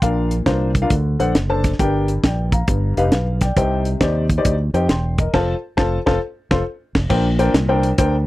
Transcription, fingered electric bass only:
0.02 0.40 A#1 medium
0.46 0.84 C2 medium
0.90 1.15 D2 loud
1.20 1.33 A#1 medium
1.35 1.73 F#1 medium
1.80 2.17 G1 loud
2.24 2.61 A#1 medium
2.68 2.93 G1 medium
2.97 3.10 F1 medium
3.12 3.50 B1 medium
3.57 3.94 C2 loud
4.01 4.38 D#2 medium
4.45 4.70 D2 medium
4.74 4.87 F2 medium
4.89 5.27 E1 medium
5.34 5.53 F1 loud
5.78 5.97 F1 medium
6.07 6.17 F1 medium
6.51 6.61 F1 medium
6.95 7.05 F1 medium
7.10 7.48 A#1 loud
7.54 7.92 C2 medium
7.99 8.27 D2 medium

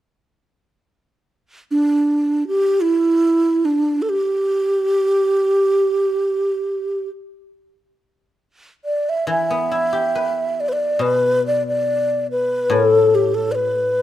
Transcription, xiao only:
1.71 2.44 D4 medium
2.48 2.82 G4 medium
2.81 3.66 E4 medium
3.65 4.03 D4 medium
4.02 4.11 A4 soft
4.09 7.09 G4 medium
8.85 9.11 D5 medium
9.09 9.29 E5 medium
9.29 10.62 E5 medium
10.60 10.70 D5 medium
10.69 10.74 B4 medium
10.69 11.03 D5 medium
11.02 11.45 B4 medium
11.47 11.66 D5 medium
11.68 12.27 D5 medium
12.31 12.73 B4 medium
12.72 13.16 A4 medium
13.15 13.36 G4 medium
13.34 13.53 A4 medium
13.52 14.02 B4 medium
13.52 13.56 D5 medium

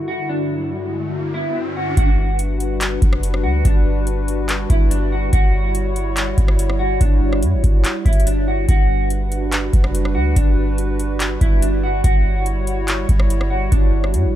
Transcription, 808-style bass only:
1.97 2.98 G1 loud
3.02 3.46 F#1 loud
3.44 3.64 D2 loud
3.65 4.66 G1 loud
4.70 5.30 G1 loud
5.33 6.34 G1 loud
6.38 6.98 G1 loud
7.01 7.44 G1 loud
7.43 7.55 G2 loud
7.53 7.63 G1 loud
7.64 7.84 G1 loud
8.06 8.66 G1 loud
8.69 9.70 G1 loud
9.73 10.17 F#1 loud
10.15 10.35 D2 loud
10.36 11.37 G1 loud
11.41 12.02 G1 loud
12.04 13.05 G1 loud
13.09 13.70 G1 loud
13.72 14.16 G1 loud
14.14 14.26 G2 loud
14.25 14.35 G1 loud

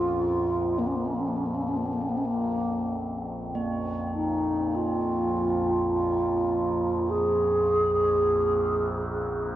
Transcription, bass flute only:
0.00 0.79 F4 medium
0.78 0.87 A#3 medium
0.86 0.96 C#4 medium
0.95 1.06 A#3 medium
1.05 1.15 C#4 medium
1.13 1.21 A#3 medium
1.19 1.28 C#4 medium
1.27 1.38 A#3 medium
1.37 1.47 C#4 medium
1.45 1.55 A#3 medium
1.54 1.63 C#4 medium
1.62 1.69 A#3 medium
1.68 1.77 C#4 medium
1.76 1.86 A#3 medium
1.85 1.94 C#4 medium
1.92 2.02 A#3 medium
2.01 2.10 C#4 medium
2.08 2.18 A#3 medium
2.17 2.26 C#4 medium
2.25 2.93 A#3 medium
4.14 4.76 D#4 medium
4.75 7.11 F4 medium
7.09 9.47 G#4 medium

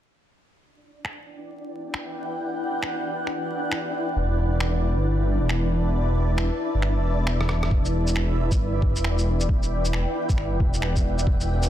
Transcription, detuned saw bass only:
4.16 4.95 E1 loud
4.96 5.39 G1 medium
5.41 6.50 E1 medium
6.74 6.98 G1 medium
6.97 7.71 E1 medium
7.71 8.50 E1 loud
8.51 8.94 G1 medium
8.96 10.06 E1 medium
10.29 10.53 G1 medium
10.52 11.26 E1 medium
11.27 11.69 E1 loud

